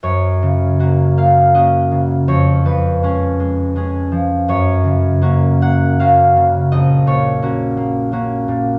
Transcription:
X:1
M:3/4
L:1/8
Q:1/4=82
K:F#
V:1 name="Harp"
c3 e d2 | c B4- B | c3 f e2 | d c4- c |]
V:2 name="Harp"
F,, C, [A,CF] A, [A,CF] C, | E,, E, [G,CG] G, [G,CG] E, | F,, C, [A,CF] A, [A,CF] C, | A,,, A,, [A,CF] A, [A,CF] A,, |]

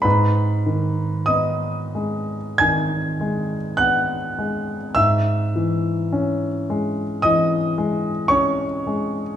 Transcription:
X:1
M:4/4
L:1/8
Q:1/4=52
K:G#m
V:1 name="Grand piano"
[Bb]2 [dd']2 [gg']2 [ff']2 | [ee']4 [dd']2 [cc']2 |]
V:2 name="Grand piano" clef=bass
G,, D, B, G, D, G, B, G, | G,, E, C G, E, G, C G, |]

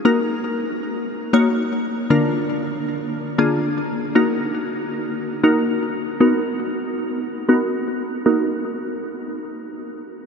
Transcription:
X:1
M:4/4
L:1/8
Q:1/4=117
K:Ebm
V:1 name="Synth pluck"
[B,EGB]3 z2 [B,EGd]2 z | [=D,B,=DFB]3 z2 [D,B,DFA]2 z | [B,EGB]3 z2 [B,EGB]2 z | [=B,^D^F^A]3 z2 [B,DFA]2 z |
[B,EGB] z6 z |]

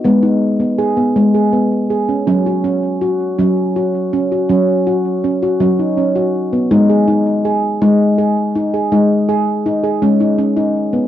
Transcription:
X:1
M:6/8
L:1/16
Q:3/8=54
K:F#mix
V:1 name="Handpan"
B, D2 B, G B,2 G B,2 G C | C F C2 F2 C2 F2 C F | C2 F2 C F C D C F2 B, | D G D2 G2 D2 G2 D G |
D2 G2 D G C D C D2 B, |]
V:2 name="Handpan" clef=bass
G,6 G,6 | F,6 F,6 | F,6 F,6 | G,6 G,6 |
G,6 G,6 |]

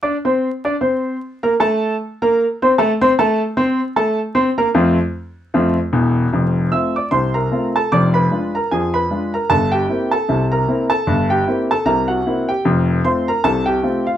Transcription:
X:1
M:2/4
L:1/16
Q:"Swing 16ths" 1/4=76
K:F
V:1 name="Grand piano"
[Ddd'] [Ccc']2 [Ddd'] [Ccc']3 [B,Bb] | [A,Aa]3 [B,Bb]2 [Ccc'] [A,Aa] [Ccc'] | [A,Aa]2 [Ccc']2 [A,Aa]2 [Ccc'] [B,Bb] | [F,,A,CF]2 z2 [F,,A,CF]2 z2 |
z2 [ee'] [dd'] [cc'] [Bb]2 [Aa] | [dd'] [_c_c']2 [Bb] [_A_a] [cc']2 [Bb] | [Aa] [Gg]2 [Aa]2 [Bb]2 [Aa]- | [Aa] [Gg]2 [Aa] [Bb] [_G_g]2 [=G=g] |
z2 [cc'] [Bb] [Aa] [Gg]2 [Ff] |]
V:2 name="Grand piano"
z8 | z8 | z8 | z6 [E,,,E,,]2 |
[F,,,F,,]2 [A,CF]2 [C,,C,]2 [A,CF]2 | [F,,,F,,]2 [_A,DF]2 [F,,F,]2 [A,DF]2 | [G,,,G,,]2 [B,CE]2 [C,,C,]2 [B,CE]2 | [G,,,G,,]2 [B,CE]2 [C,,C,]2 [B,CE]2 |
[F,,,F,,]2 [A,CF]2 [C,,C,]2 [A,CF]2 |]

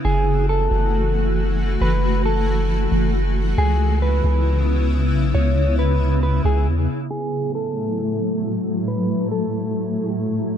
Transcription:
X:1
M:4/4
L:1/8
Q:1/4=136
K:F#m
V:1 name="Clean electric guitar"
G2 A6 | B2 A4 z2 | G2 B6 | c2 B2 B G z2 |
G2 A6 | B2 A4 z2 |]
V:2 name="Ambient pad"
[E,A,F]8- | [E,A,F]8 | [C,B,E]8- | [C,B,E]8 |
[A,,F,A,E]8- | [A,,F,A,E]8 |]
V:3 name="808-style bass" clef=bass
F,,,3 F,,,4- F,,, | F,,,4- F,,, F,,,3 | C,,3 C,,4 B,,, | C,,4- C,, C,, E,, z |
z8 | z8 |]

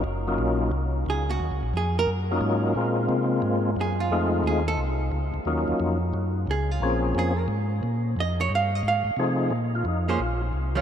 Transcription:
X:1
M:4/4
L:1/16
Q:"Swing" 1/4=178
K:Bbm
V:1 name="Hollow-body jazz guitar"
z12 A2 G2- | G4 A2 B2 z8 | z12 A2 F2- | F4 ^G2 =A2 z8 |
z12 A2 F2- | F4 A2 B2 z8 | e2 d2 f2 e2 f6- f z | z6 [B,DAc]2 z6 [E,G,DF]2 |]
V:2 name="Tonewheel organ"
z2 [G,B,DEF]6 z8 | z8 z2 [G,B,DEF]6 | [A,B,CF]8- [A,B,CF]2 z6 | [^G,=A,CEF]6 z8 z2 |
[G,B,DEF]6 z8 z2 | [F,B,CDA]6 z8 z2 | z12 [F,=A,CE^G]4 | z2 F2 E2 F2 F2 z4 F2 |]
V:3 name="Tonewheel organ" clef=bass
G,,,4 B,,,4 C,,4 D,,4 | (3E,,2 D,,2 B,,,2 F,,4 G,,4 A,,4 | B,,4 C,4 A,,4 G,,4 | F,,4 E,,4 C,,4 D,,2 D,,2 |
E,,2 E,,2 F,,4 G,,4 D,,4 | B,,,4 F,,4 A,,4 B,,4 | F,,4 =G,,4 ^G,,2 G,,2 C,4 | B,,4 F,,4 B,,,4 C,,4 |]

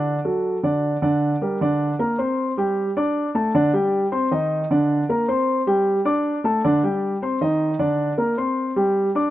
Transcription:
X:1
M:4/4
L:1/8
Q:1/4=155
K:Dphr
V:1 name="Grand piano"
[D,Dd] [^F,^FA]2 [D,Dd]2 [D,Dd]2 [G,GB] | [K:Gm] [D,Dd]2 [B,Bb] [Ccc']2 [G,Gg]2 [Ddd']- | [Ddd'] [A,Aa] [D,Dd] [G,Gg]2 [Ccc'] [E,Ee]2 | [D,Dd]2 [B,Bb] [Ccc']2 [G,Gg]2 [Ddd']- |
[Ddd'] [A,Aa] [D,Dd] [G,Gg]2 [Ccc'] [E,Ee]2 | [D,Dd]2 [B,Bb] [Ccc']2 [G,Gg]2 [Ddd'] |]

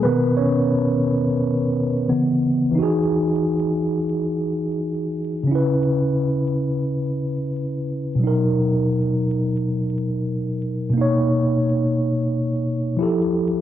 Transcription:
X:1
M:4/4
L:1/8
Q:"Swing 16ths" 1/4=88
K:B
V:1 name="Tine electric piano"
[B,B] [Cc]2 z4 z | [E,DFG]8 | [C,CEB]8 | [B,,F,DA]8 |
[B,,A,Dc]6 [=F,E=G=A]2 |]
V:2 name="Tine electric piano" clef=bass
[B,,D,A]6 [C,E,B,]2 | z8 | z8 | z8 |
z8 |]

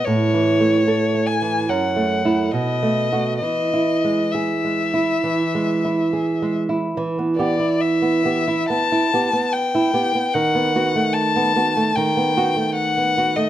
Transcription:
X:1
M:4/4
L:1/16
Q:1/4=73
K:E
V:1 name="Violin"
c6 g2 f4 d4 | d4 e8- e2 z2 | [K:Em] z2 d2 e4 a4 g4 | f4 a4 g4 f3 ^d |]
V:2 name="Nylon-string guitar"
(3A,,2 E,2 A,2 (3A2 A,2 E,2 (3F,,2 A,2 [A,E]2 (3B,,2 A,2 [A,F]2 | (3E,2 E2 G,2 (3G2 G,2 E2 (3E,2 G,2 E2 (3G2 G,2 E2 | [K:Em] E, B, [B,G] E2 B, [B,G] E B, E [B,G] B,2 E [B,G] B, | ^D, B, [B,F] A,2 B, [B,F] A, D, B, [B,F] A,2 B, [B,F] A, |]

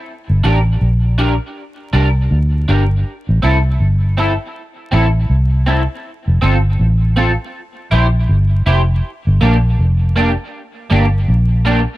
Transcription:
X:1
M:4/4
L:1/16
Q:"Swing 16ths" 1/4=80
K:Gdor
V:1 name="Clean electric guitar"
z2 [DGB]2 z2 [DGB]2 z2 [DGB]2 z2 [DGB]2 | z2 [CEA]2 z2 [CEA]2 z2 [CEA]2 z2 [CEA]2 | z2 [CFA]2 z2 [CFA]2 z2 [EGc]2 z2 [EGc]2 | z2 [B,DG]2 z2 [B,DG]2 z2 [B,DG]2 z2 [B,DG]2 |]
V:2 name="Fingered electric bass" clef=bass
z G,,, A,,,2 B,,,3 z3 C,,2 D,,2 G,,,2 | z A,,, C,,2 G,,,3 z3 A,,,2 C,,3 z | z F,,, G,,,2 A,,,3 z3 B,,,2 G,,,2 F,,,2 | z G,,, B,,,2 F,,,3 z3 G,,,2 B,,,3 z |]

